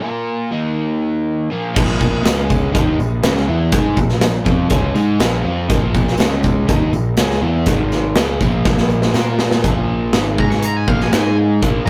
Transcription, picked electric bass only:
1.76 A#1
2.26 C#2
2.75 D#2
3.00 A#1
3.24 C#2
3.49 E2
3.72 G#2
3.97 A#1
4.22 A#1
4.46 F2
4.71 C#2
4.95 G#2
5.20 A#1
5.45 F2
5.70 A#1
6.20 C#2
6.69 D#2
6.92 A#1
7.17 C#2
7.42 E2
7.67 G#1
8.16 C#2
8.41 A#1
9.14 A#2
9.64 A#1
10.14 G#1
10.39 G#2
10.88 A#1
11.14 G#2
11.62 A#1

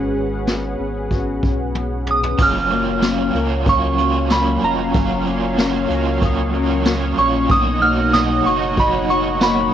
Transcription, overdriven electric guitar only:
2.38 F#3 A#3 C#4 F4
2.69 C#4 F4
2.73 A#3
3.02 F#3 A#3 C#4 F4
3.33 C#4 F4
3.37 A#3
3.66 F#3 A#3 C#4 F4
3.98 C#4 F4
4.02 A#3
4.30 F#3 A#3 C#4 F4
4.61 C#4 F4
4.66 A#3
4.93 F#3 A#3 C#4 F4
5.25 C#4 F4
5.29 A#3
5.57 F#3 A#3 C#4 F4
5.88 C#4 F4
5.93 A#3
6.20 F#3 A#3 C#4
6.25 F4
6.53 C#4 F4
6.57 A#3
6.85 F#3 A#3 C#4 F4
7.18 A#3 C#4 F4
7.49 B2 F#3 A#3 D#4 F#4
7.81 D#4 F#4
7.85 A#3
8.13 B2 F#3 A#3 D#4 F#4
8.44 D#4 F#4
8.49 A#3
8.77 F#3 A#3 D#4
8.81 F#4
9.09 D#4 F#4
9.13 A#3
9.40 B2 F#3 A#3 D#4 F#4

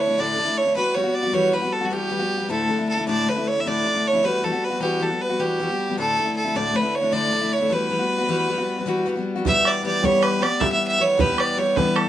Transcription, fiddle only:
0.00 C#5
0.20 D5
0.57 C#5
0.76 B4
0.94 C#5
1.15 D5
1.34 C#5
1.53 B4
1.73 A4
1.85 F#4
1.93 G4
2.51 A4
2.89 A4
3.08 D5
3.29 B4
3.47 C#5
3.60 E5
3.68 D5
4.07 C#5
4.25 B4
4.44 A4
4.64 B4
4.82 G4
5.03 A4
5.21 B4
5.40 G4
5.99 A4
6.37 A4
6.56 D5
6.76 B4
6.95 C#5
7.13 D5
7.53 C#5
7.73 B4
9.47 E5
9.67 D5
9.87 D5
10.04 C#5
10.23 B4
10.42 D5
10.60 E5
10.72 E5
10.88 E5
11.01 C#5
11.20 B4
11.40 D5
11.58 C#5
11.76 B4
11.96 A4

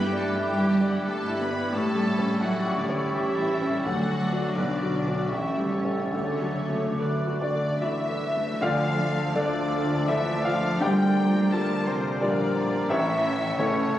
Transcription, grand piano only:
Already playing: G2 G3
0.12 D4
0.35 E4
0.58 G4
0.80 D5
1.04 G4
1.27 E4
1.49 D4
1.72 A2
1.95 G3
2.18 C#4
2.41 E4
2.66 G4
2.89 C#5
3.14 G4
3.38 E4
3.61 C#4
3.85 D2
4.10 F#3
4.32 D4 F#4
4.57 B1
4.83 F#3
5.07 D4 F#4
5.32 A1
5.57 G3
5.84 C#4 A4
6.12 D2
6.41 F#3
6.70 A3
6.99 A4
7.27 F#4
7.41 D4 D5
7.55 A4
7.81 E4 F#4 E5
8.09 A4
8.36 A3
8.61 D2 D3 F4 D5 F5
9.34 A3 D4 A4 D5
10.08 A3 D4 E4 A4 E5
10.45 F4 F5
10.80 D2 D3 G4 D5 G5
11.51 G3 F4 A4 A#4 A5
11.87 C4 C5
12.21 G3 D4 F4 A#4 D5
12.89 A1 A2 E4 C#5 E5
13.59 A3 C#4 E4 A4 C#5

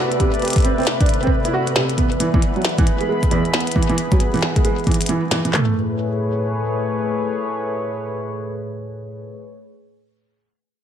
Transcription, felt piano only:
0.20 C3
0.42 G4
0.65 C4
0.78 C4
1.01 D4
1.23 C4
1.45 E4
1.53 F#4
1.76 C3
1.98 B3
2.20 E3
2.34 E3
2.56 F#3
2.78 E3
3.01 G#3
3.09 G#3
3.31 E2
3.53 B3
3.76 E3
3.89 E3
4.12 F#3
4.34 E3
4.56 G#3
4.64 G#3
4.87 E3
5.09 E3
5.31 E3
5.45 E3
5.53 A3

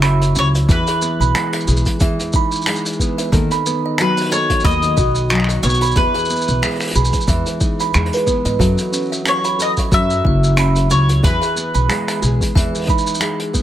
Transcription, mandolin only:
Already playing: E5
0.39 C#5
0.71 B4
4.01 B4
4.32 C#5
4.65 D#5
5.63 C#5
5.97 B4
9.28 C#5
9.62 D#5
9.94 E5
10.91 C#5
11.24 B4

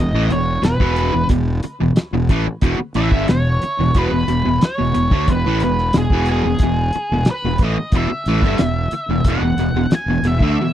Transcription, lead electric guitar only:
Already playing: D#5
0.32 C#5
0.65 B4
2.97 E5
3.29 C#5
3.98 B4
4.65 C#5
5.30 B4
5.64 B4
5.98 G#4
6.32 G#4
7.31 B4
7.65 D#5
7.97 E5
9.30 F#5
9.95 G#5
10.27 E5

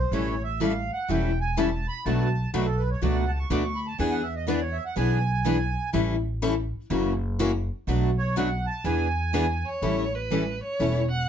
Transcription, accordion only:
Already playing: C5
0.14 C#5
0.44 E5
0.63 F5
0.93 F#5
1.11 G5
1.41 G#5
1.58 A5
1.88 B5
2.05 A5
2.66 A4
2.78 B4
2.91 C#5
3.03 D5
3.15 F#5
3.27 A5
3.39 C#6
3.52 D6
3.64 C#6
3.75 B5
3.87 A5
4.00 G#5
4.11 F#5
4.23 E5
4.36 D#5
4.48 D5
4.61 C#5
4.72 E5
4.85 F#5
4.97 G#5
8.18 C#5
8.36 F#5
8.67 A5
8.85 G#5

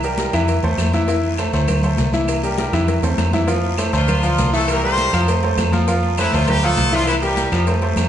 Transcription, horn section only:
3.95 F3 D4 F4
4.54 A3 F4 A4
4.70 A#3 G4 A#4
4.84 C4 A4 C5
6.19 E3 C4 E4
6.35 F3 D4 F4
6.49 G3 D4 G4
6.64 A3 F4 A4
6.93 F3 D4 F4
7.08 E3 C4 E4
7.23 G3 E4 G4

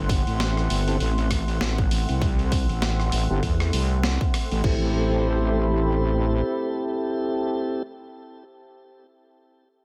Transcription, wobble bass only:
Already playing: G1
0.27 A1
0.70 G1
1.00 A1
1.61 A1
2.09 C2
2.69 A1
3.13 A1
3.30 G1
3.43 E2
3.73 C2
4.51 A1
4.64 A1

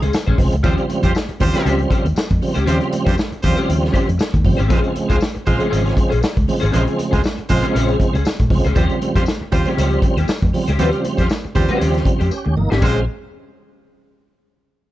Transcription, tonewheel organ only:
0.38 C#3 F3 G#3 C4
0.63 C#3 F3 G3 C4
1.40 C#3 F3 G3 C4
2.42 C#3 F3 G3 C4
2.67 C#3 F3 G3 C4
3.43 C#3 F3 G3 C4
4.45 C#3 F3 G3 C4
4.70 C#3 F3 G#3 C4
5.46 C#3 F3 G#3 C4
6.48 C#3 F3 G#3 C4
6.73 C#3 F3 G#3 C4
7.49 C#3 F3 G#3 C4
8.50 C#3 F3 G#3 C4
8.75 C#3 F3 G3 B3
8.82 C4
9.52 C#3 F3 G3 C4
10.53 C#3 F3 G3 C4
10.79 C#3 F3 G3 C4
11.55 C#3 F3 G3 C4
12.31 C#4 G4
12.56 A#3 D#4
12.71 G3 C4
12.82 C#3 F3 G#3 C4

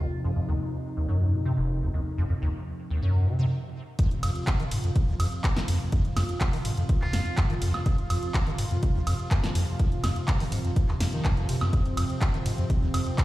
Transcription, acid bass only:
0.00 D#2
0.24 F2
0.36 F2
0.48 D#2
0.97 D#2
1.09 F#2
1.33 C3
1.45 C3
1.57 F1
1.81 F2
1.94 D#2
2.18 F2
2.30 F2
2.42 D#2
2.90 D#2
3.02 F#2
3.26 C3
3.39 C3
3.99 F2
4.23 F2
4.60 D#3
4.71 G#2
4.84 F2
5.08 D#2
5.20 F2
5.44 F2
5.56 D#3
5.68 F2
5.92 F2
6.16 F2
6.53 D#3
6.65 G#2
6.77 F2
7.02 D#2
7.13 F2
7.38 F2
7.50 D#3
7.62 F2
7.86 F2
8.10 F2
8.47 D#3
8.59 G#2
8.71 F2
8.95 D#2
9.07 F2
9.31 F2
9.44 D#3
9.55 F2
9.80 F2
10.04 F2
10.41 D#3
10.52 G#2
10.65 F2
10.89 D#2
11.00 F2
11.13 D#3
11.25 F2
11.37 F2
11.49 C3
11.61 F#2
11.73 F2
11.97 F2
12.34 D#3
12.46 G#2
12.58 F2
12.82 D#2
12.94 F2
13.18 F2

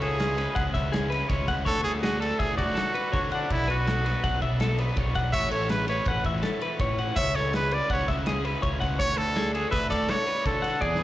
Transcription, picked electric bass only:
Already playing: C#2
0.56 C#2
0.74 C#2
1.29 C#2
1.48 C#2
1.66 D2
1.83 D2
2.40 D2
2.58 D2
3.13 D3
3.50 B1
4.24 B1
4.42 B1
4.97 B1
5.15 B1
5.33 A1
5.51 A1
6.06 A1
6.24 A1
6.79 A2
7.17 C#2
7.90 C#2
8.08 C#2
8.63 C#2
8.81 C#2
8.99 D2
9.17 D2
9.73 D2
9.91 D2
10.46 D3
10.82 E2

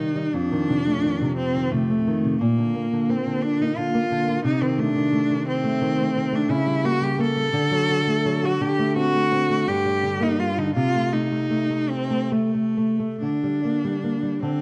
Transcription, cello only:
Already playing: D#4
0.34 D4
1.37 C4
1.71 A3
2.40 A#3
3.10 C4
3.43 D4
3.61 D#4
3.77 F4
4.45 D#4
4.62 C4
4.79 D4
5.48 C4
6.35 D4
6.51 E4
6.85 F#4
7.03 G4
7.20 A4
8.45 F#4
8.62 G4
8.97 F#4
9.68 G4
10.23 D#4
10.40 F4
10.59 D#4
10.75 F4
11.12 D#4
11.89 C4
12.32 A3
13.22 D4
14.43 C4

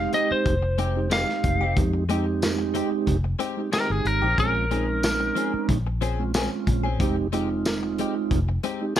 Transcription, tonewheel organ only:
Already playing: G#3 C4 D#4 G4
0.96 G#3 C4 D#4 G4
1.11 G#3 C4 D#4 G4
1.77 G#3 C4 D#4 G4
2.10 G#3 C4 D#4 G4
3.57 G#3 C4 D#4 G4
3.73 G#3 C4 D#4 G4
4.39 G#3 C4 C#4 F4
4.71 G#3 C4 C#4 D#4
6.19 G#3 C4 C#4 F4
6.35 G#3 C4 C#4 F4
7.00 G#3 C4 D#4 G4
7.32 G#3 C4 D#4 F4
8.81 G#3 C4 D#4 G4
8.97 G#3

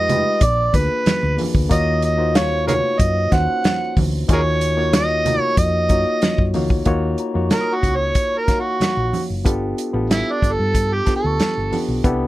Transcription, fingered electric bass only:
Already playing: F2
0.42 A#1
0.74 D2
1.06 muted fingered electric bass stroke
1.23 D2
1.55 D2
1.71 D#2
2.99 F#2
3.32 D#2
3.97 D2
4.29 D#2
5.57 F2
5.90 F#2
6.39 F#2
6.55 D2
6.86 D#2
7.35 F2
7.83 C#2
8.81 muted fingered electric bass stroke
8.97 A#1
9.30 F#1
9.45 G1
9.94 A1
10.42 G1
10.59 G2
11.24 D2
11.57 G1
11.88 B1
12.05 C2

